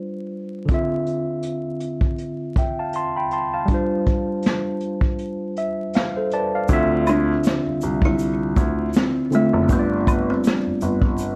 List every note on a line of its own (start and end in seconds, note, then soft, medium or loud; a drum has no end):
0.00 0.63 G3 medium
0.00 0.64 D4 medium
0.00 0.66 F4 medium
0.00 0.67 C5 medium
0.65 3.63 D3 medium
0.65 3.65 C4 medium
0.65 kick loud
0.65 closed hi-hat medium
0.71 3.66 F4 medium
0.71 2.55 E5 medium
1.07 closed hi-hat medium
1.43 closed hi-hat medium
1.80 closed hi-hat medium
2.01 kick medium
2.18 closed hi-hat medium
2.56 2.77 E5 soft
2.56 2.77 G5 medium
2.56 kick medium
2.56 closed hi-hat medium
2.79 2.94 F5 soft
2.79 2.94 A5 medium
2.93 3.15 A5 medium
2.93 3.15 C6 medium
2.93 closed hi-hat medium
3.16 3.32 G5 medium
3.16 3.31 B5 medium
3.31 3.52 A5 medium
3.31 3.52 C6 medium
3.31 closed hi-hat medium
3.54 3.89 F5 soft
3.54 3.89 A5 medium
3.65 6.63 G3 medium
3.65 6.65 D4 medium
3.65 kick loud
3.65 closed hi-hat medium
3.71 6.66 F4 medium
3.71 5.55 C5 medium
4.06 kick medium
4.06 closed hi-hat soft
4.42 snare medium
4.42 closed hi-hat medium
4.80 closed hi-hat medium
5.01 kick medium
5.18 closed hi-hat medium
5.56 5.92 E5 medium
5.56 closed hi-hat medium
5.93 6.29 F5 medium
5.93 snare loud
5.93 closed hi-hat medium
6.16 6.32 A4 medium
6.16 6.31 C5 medium
6.31 6.53 B4 medium
6.31 6.52 D5 medium
6.31 6.67 A5 medium
6.31 closed hi-hat medium
6.55 6.89 D5 soft
6.55 6.89 F5 medium
6.68 7.31 D2 loud
6.68 7.96 D3 medium
6.68 7.97 C4 medium
6.68 7.97 F4 medium
6.68 kick loud
6.68 closed hi-hat medium
6.68 shaker medium
6.73 7.98 E5 loud
7.07 8.00 D4 loud
7.07 closed hi-hat medium
7.07 high woodblock medium
7.07 shaker medium
7.43 snare loud
7.43 closed hi-hat medium
7.43 shaker medium
7.67 7.73 C2 soft
7.81 8.57 C2 medium
7.81 closed hi-hat medium
7.81 shaker medium
8.02 8.91 E4 loud
8.02 kick loud
8.19 closed hi-hat medium
8.19 shaker medium
8.56 8.88 D2 medium
8.56 kick loud
8.56 closed hi-hat medium
8.56 shaker soft
8.94 snare loud
8.94 closed hi-hat medium
8.94 shaker medium
8.98 9.34 C4 loud
9.31 9.63 D3 medium
9.31 9.64 C4 medium
9.31 9.64 F4 medium
9.31 closed hi-hat medium
9.31 shaker soft
9.35 9.72 A3 medium
9.35 9.65 E5 medium
9.53 9.67 F#1 medium
9.68 10.31 G1 loud
9.68 10.95 G3 medium
9.68 10.96 D4 medium
9.68 10.97 F4 medium
9.68 kick loud
9.68 closed hi-hat medium
9.68 shaker medium
9.72 10.31 B3 medium
9.72 9.78 B4 medium
9.79 11.01 D5 medium
10.07 kick medium
10.07 closed hi-hat medium
10.07 high woodblock medium
10.07 shaker medium
10.30 11.36 C4 medium
10.44 snare loud
10.44 closed hi-hat loud
10.44 shaker medium
10.67 10.73 G1 soft
10.81 11.36 G1 medium
10.81 closed hi-hat medium
10.81 shaker medium
11.02 kick loud
11.18 closed hi-hat medium
11.18 shaker medium